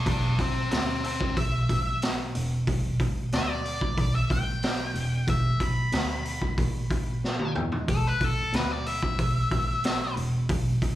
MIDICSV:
0, 0, Header, 1, 4, 480
1, 0, Start_track
1, 0, Key_signature, 1, "minor"
1, 0, Tempo, 652174
1, 49, Time_signature, 4, 2, 24, 8
1, 8061, End_track
2, 0, Start_track
2, 0, Title_t, "Lead electric guitar"
2, 0, Program_c, 0, 29
2, 55, Note_on_c, 0, 71, 63
2, 59, Note_on_c, 0, 74, 77
2, 275, Note_off_c, 0, 71, 0
2, 287, Note_off_c, 0, 74, 0
2, 293, Note_on_c, 0, 67, 64
2, 300, Note_on_c, 0, 76, 61
2, 515, Note_off_c, 0, 67, 0
2, 528, Note_off_c, 0, 76, 0
2, 532, Note_on_c, 0, 67, 66
2, 538, Note_on_c, 0, 76, 82
2, 754, Note_off_c, 0, 67, 0
2, 766, Note_off_c, 0, 76, 0
2, 777, Note_on_c, 0, 67, 57
2, 782, Note_on_c, 0, 76, 64
2, 997, Note_off_c, 0, 67, 0
2, 1006, Note_off_c, 0, 76, 0
2, 1015, Note_on_c, 0, 76, 102
2, 1478, Note_off_c, 0, 76, 0
2, 2456, Note_on_c, 0, 76, 84
2, 2574, Note_off_c, 0, 76, 0
2, 2574, Note_on_c, 0, 74, 73
2, 3037, Note_off_c, 0, 74, 0
2, 3057, Note_on_c, 0, 76, 77
2, 3169, Note_off_c, 0, 76, 0
2, 3179, Note_on_c, 0, 79, 87
2, 3872, Note_off_c, 0, 79, 0
2, 3898, Note_on_c, 0, 76, 71
2, 4126, Note_off_c, 0, 76, 0
2, 4141, Note_on_c, 0, 83, 81
2, 5544, Note_off_c, 0, 83, 0
2, 5814, Note_on_c, 0, 69, 78
2, 5940, Note_off_c, 0, 69, 0
2, 5940, Note_on_c, 0, 71, 84
2, 6067, Note_off_c, 0, 71, 0
2, 6067, Note_on_c, 0, 69, 74
2, 6290, Note_off_c, 0, 69, 0
2, 6297, Note_on_c, 0, 71, 76
2, 6411, Note_off_c, 0, 71, 0
2, 6411, Note_on_c, 0, 74, 78
2, 6525, Note_off_c, 0, 74, 0
2, 6533, Note_on_c, 0, 76, 89
2, 7461, Note_off_c, 0, 76, 0
2, 8061, End_track
3, 0, Start_track
3, 0, Title_t, "Double bass"
3, 0, Program_c, 1, 43
3, 45, Note_on_c, 1, 28, 93
3, 270, Note_off_c, 1, 28, 0
3, 285, Note_on_c, 1, 28, 42
3, 510, Note_off_c, 1, 28, 0
3, 533, Note_on_c, 1, 38, 82
3, 982, Note_off_c, 1, 38, 0
3, 1007, Note_on_c, 1, 35, 85
3, 1231, Note_off_c, 1, 35, 0
3, 1247, Note_on_c, 1, 34, 79
3, 1699, Note_off_c, 1, 34, 0
3, 1729, Note_on_c, 1, 28, 91
3, 1953, Note_off_c, 1, 28, 0
3, 1967, Note_on_c, 1, 28, 91
3, 2192, Note_off_c, 1, 28, 0
3, 2203, Note_on_c, 1, 28, 44
3, 2429, Note_off_c, 1, 28, 0
3, 2451, Note_on_c, 1, 38, 78
3, 2901, Note_off_c, 1, 38, 0
3, 2925, Note_on_c, 1, 35, 89
3, 3150, Note_off_c, 1, 35, 0
3, 3168, Note_on_c, 1, 34, 78
3, 3619, Note_off_c, 1, 34, 0
3, 3637, Note_on_c, 1, 28, 78
3, 3866, Note_off_c, 1, 28, 0
3, 3881, Note_on_c, 1, 28, 85
3, 4108, Note_off_c, 1, 28, 0
3, 4123, Note_on_c, 1, 28, 40
3, 4349, Note_off_c, 1, 28, 0
3, 4361, Note_on_c, 1, 38, 81
3, 4815, Note_off_c, 1, 38, 0
3, 4844, Note_on_c, 1, 34, 86
3, 5536, Note_off_c, 1, 34, 0
3, 5562, Note_on_c, 1, 40, 84
3, 5787, Note_off_c, 1, 40, 0
3, 5801, Note_on_c, 1, 28, 94
3, 6027, Note_off_c, 1, 28, 0
3, 6042, Note_on_c, 1, 28, 39
3, 6267, Note_off_c, 1, 28, 0
3, 6276, Note_on_c, 1, 38, 84
3, 6732, Note_off_c, 1, 38, 0
3, 6760, Note_on_c, 1, 35, 82
3, 6986, Note_off_c, 1, 35, 0
3, 7001, Note_on_c, 1, 34, 75
3, 7454, Note_off_c, 1, 34, 0
3, 7481, Note_on_c, 1, 28, 88
3, 7707, Note_off_c, 1, 28, 0
3, 7723, Note_on_c, 1, 28, 88
3, 7948, Note_off_c, 1, 28, 0
3, 7961, Note_on_c, 1, 28, 38
3, 8061, Note_off_c, 1, 28, 0
3, 8061, End_track
4, 0, Start_track
4, 0, Title_t, "Drums"
4, 45, Note_on_c, 9, 46, 66
4, 46, Note_on_c, 9, 36, 106
4, 119, Note_off_c, 9, 46, 0
4, 120, Note_off_c, 9, 36, 0
4, 284, Note_on_c, 9, 46, 54
4, 286, Note_on_c, 9, 36, 75
4, 357, Note_off_c, 9, 46, 0
4, 359, Note_off_c, 9, 36, 0
4, 524, Note_on_c, 9, 46, 66
4, 534, Note_on_c, 9, 38, 97
4, 598, Note_off_c, 9, 46, 0
4, 607, Note_off_c, 9, 38, 0
4, 768, Note_on_c, 9, 46, 51
4, 841, Note_off_c, 9, 46, 0
4, 887, Note_on_c, 9, 36, 72
4, 961, Note_off_c, 9, 36, 0
4, 1007, Note_on_c, 9, 46, 75
4, 1008, Note_on_c, 9, 36, 109
4, 1080, Note_off_c, 9, 46, 0
4, 1081, Note_off_c, 9, 36, 0
4, 1247, Note_on_c, 9, 36, 84
4, 1247, Note_on_c, 9, 46, 51
4, 1321, Note_off_c, 9, 36, 0
4, 1321, Note_off_c, 9, 46, 0
4, 1486, Note_on_c, 9, 46, 64
4, 1496, Note_on_c, 9, 38, 99
4, 1560, Note_off_c, 9, 46, 0
4, 1569, Note_off_c, 9, 38, 0
4, 1728, Note_on_c, 9, 46, 52
4, 1802, Note_off_c, 9, 46, 0
4, 1968, Note_on_c, 9, 36, 98
4, 1968, Note_on_c, 9, 46, 71
4, 2041, Note_off_c, 9, 36, 0
4, 2042, Note_off_c, 9, 46, 0
4, 2206, Note_on_c, 9, 36, 87
4, 2207, Note_on_c, 9, 46, 56
4, 2280, Note_off_c, 9, 36, 0
4, 2280, Note_off_c, 9, 46, 0
4, 2446, Note_on_c, 9, 46, 64
4, 2455, Note_on_c, 9, 38, 92
4, 2519, Note_off_c, 9, 46, 0
4, 2529, Note_off_c, 9, 38, 0
4, 2689, Note_on_c, 9, 46, 47
4, 2762, Note_off_c, 9, 46, 0
4, 2807, Note_on_c, 9, 36, 76
4, 2880, Note_off_c, 9, 36, 0
4, 2926, Note_on_c, 9, 36, 107
4, 2926, Note_on_c, 9, 46, 77
4, 3000, Note_off_c, 9, 36, 0
4, 3000, Note_off_c, 9, 46, 0
4, 3166, Note_on_c, 9, 36, 91
4, 3169, Note_on_c, 9, 46, 57
4, 3240, Note_off_c, 9, 36, 0
4, 3243, Note_off_c, 9, 46, 0
4, 3405, Note_on_c, 9, 46, 70
4, 3414, Note_on_c, 9, 38, 96
4, 3478, Note_off_c, 9, 46, 0
4, 3488, Note_off_c, 9, 38, 0
4, 3645, Note_on_c, 9, 46, 51
4, 3718, Note_off_c, 9, 46, 0
4, 3884, Note_on_c, 9, 36, 111
4, 3884, Note_on_c, 9, 46, 68
4, 3958, Note_off_c, 9, 36, 0
4, 3958, Note_off_c, 9, 46, 0
4, 4123, Note_on_c, 9, 36, 80
4, 4123, Note_on_c, 9, 46, 59
4, 4196, Note_off_c, 9, 46, 0
4, 4197, Note_off_c, 9, 36, 0
4, 4358, Note_on_c, 9, 46, 74
4, 4368, Note_on_c, 9, 38, 95
4, 4432, Note_off_c, 9, 46, 0
4, 4442, Note_off_c, 9, 38, 0
4, 4603, Note_on_c, 9, 46, 51
4, 4676, Note_off_c, 9, 46, 0
4, 4722, Note_on_c, 9, 36, 70
4, 4796, Note_off_c, 9, 36, 0
4, 4840, Note_on_c, 9, 46, 73
4, 4842, Note_on_c, 9, 36, 104
4, 4913, Note_off_c, 9, 46, 0
4, 4915, Note_off_c, 9, 36, 0
4, 5082, Note_on_c, 9, 36, 90
4, 5082, Note_on_c, 9, 46, 54
4, 5156, Note_off_c, 9, 36, 0
4, 5156, Note_off_c, 9, 46, 0
4, 5330, Note_on_c, 9, 38, 48
4, 5403, Note_off_c, 9, 38, 0
4, 5440, Note_on_c, 9, 48, 55
4, 5514, Note_off_c, 9, 48, 0
4, 5559, Note_on_c, 9, 45, 81
4, 5633, Note_off_c, 9, 45, 0
4, 5682, Note_on_c, 9, 43, 79
4, 5755, Note_off_c, 9, 43, 0
4, 5801, Note_on_c, 9, 46, 66
4, 5802, Note_on_c, 9, 36, 109
4, 5875, Note_off_c, 9, 46, 0
4, 5876, Note_off_c, 9, 36, 0
4, 6039, Note_on_c, 9, 46, 57
4, 6042, Note_on_c, 9, 36, 80
4, 6113, Note_off_c, 9, 46, 0
4, 6115, Note_off_c, 9, 36, 0
4, 6281, Note_on_c, 9, 46, 67
4, 6290, Note_on_c, 9, 38, 89
4, 6354, Note_off_c, 9, 46, 0
4, 6364, Note_off_c, 9, 38, 0
4, 6523, Note_on_c, 9, 46, 52
4, 6597, Note_off_c, 9, 46, 0
4, 6643, Note_on_c, 9, 36, 76
4, 6716, Note_off_c, 9, 36, 0
4, 6762, Note_on_c, 9, 46, 70
4, 6763, Note_on_c, 9, 36, 105
4, 6835, Note_off_c, 9, 46, 0
4, 6837, Note_off_c, 9, 36, 0
4, 7002, Note_on_c, 9, 46, 51
4, 7003, Note_on_c, 9, 36, 89
4, 7076, Note_off_c, 9, 36, 0
4, 7076, Note_off_c, 9, 46, 0
4, 7241, Note_on_c, 9, 46, 68
4, 7250, Note_on_c, 9, 38, 98
4, 7314, Note_off_c, 9, 46, 0
4, 7324, Note_off_c, 9, 38, 0
4, 7485, Note_on_c, 9, 46, 50
4, 7558, Note_off_c, 9, 46, 0
4, 7721, Note_on_c, 9, 46, 76
4, 7723, Note_on_c, 9, 36, 103
4, 7795, Note_off_c, 9, 46, 0
4, 7797, Note_off_c, 9, 36, 0
4, 7963, Note_on_c, 9, 46, 64
4, 7964, Note_on_c, 9, 36, 80
4, 8037, Note_off_c, 9, 36, 0
4, 8037, Note_off_c, 9, 46, 0
4, 8061, End_track
0, 0, End_of_file